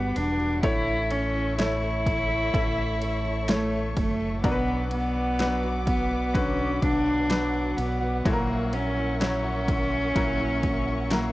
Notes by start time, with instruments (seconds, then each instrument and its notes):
Already playing: fingered electric bass G1, grand piano G3 F#4 A4 B4, steel-string acoustic guitar G3 B3 D4 F#4, cello B3, string section B4 F#5 D6
0.16 fingered electric bass E1, steel-string acoustic guitar D4, cello D4, ride
0.39 steel-string acoustic guitar F#4
0.62 fingered electric bass A1, steel-string acoustic guitar A2, grand piano A2 A3 E4 C#5, cello E4, string section A4 C#5 E5 C#6, kick, ride
0.87 steel-string acoustic guitar E4
1.10 cello C#4, steel-string acoustic guitar A4, ride
1.35 steel-string acoustic guitar E4
1.58 grand piano A3 E4 C#5, steel-string acoustic guitar A3, cello E4, snare, ride
1.83 steel-string acoustic guitar A4
2.06 steel-string acoustic guitar E4, kick, ride
2.30 steel-string acoustic guitar A4
2.53 fingered electric bass A1, steel-string acoustic guitar A2, grand piano A3 E4 E5, kick, ride
2.78 steel-string acoustic guitar E4
3.02 steel-string acoustic guitar A4, ride
3.25 steel-string acoustic guitar E4
3.48 cello A3, steel-string acoustic guitar A3, grand piano A3 E4 C#5, snare, ride
3.73 steel-string acoustic guitar A4
3.96 fingered electric bass F#1, cello A3, steel-string acoustic guitar E4, kick, ride
4.20 steel-string acoustic guitar A4
4.43 fingered electric bass B1, steel-string acoustic guitar B2, grand piano B2 F#3 D4 A#4, cello B3, string section B4 F#5 D6, kick, ride
4.52 grand piano B4
4.68 steel-string acoustic guitar D4
4.91 cello B3, steel-string acoustic guitar F#4, ride
5.16 steel-string acoustic guitar D4
5.39 grand piano F#3 D4 B4, steel-string acoustic guitar F#3, snare, ride
5.63 steel-string acoustic guitar F#4
5.86 cello B3, steel-string acoustic guitar D4, kick, ride
6.11 steel-string acoustic guitar F#4
6.34 steel-string acoustic guitar B2, grand piano D3 F#3 B4, cello C#4, kick, ride
6.58 steel-string acoustic guitar D4
6.82 fingered electric bass B1, cello D4, steel-string acoustic guitar F#4, kick, ride
7.06 steel-string acoustic guitar D4
7.29 grand piano F#3 D4 B4, steel-string acoustic guitar F#3, snare, ride
7.53 steel-string acoustic guitar F#4
7.77 fingered electric bass B1, cello B3, steel-string acoustic guitar D4, ride
8.01 steel-string acoustic guitar F#4
8.24 fingered electric bass A#1, grand piano A#2 F#3 E4 A4, cello A#3, string section A#4 E5 C#6, kick, ride
8.33 grand piano A#4
8.49 steel-string acoustic guitar E4
8.73 cello C#4, steel-string acoustic guitar F#4, ride
8.96 steel-string acoustic guitar E4
9.20 grand piano F#3 E4 C#5, steel-string acoustic guitar C#4, cello C#4, snare, ride
9.44 steel-string acoustic guitar F#4
9.68 steel-string acoustic guitar E4, kick, ride
9.92 steel-string acoustic guitar F#4
10.15 fingered electric bass A#1, grand piano F#3 E4 A#4, steel-string acoustic guitar A#3, kick, ride
10.40 steel-string acoustic guitar E4
10.63 steel-string acoustic guitar F#4, kick, ride
10.87 steel-string acoustic guitar E4
11.10 grand piano F#3 E4 A#4, cello A#3, steel-string acoustic guitar C#4, snare, ride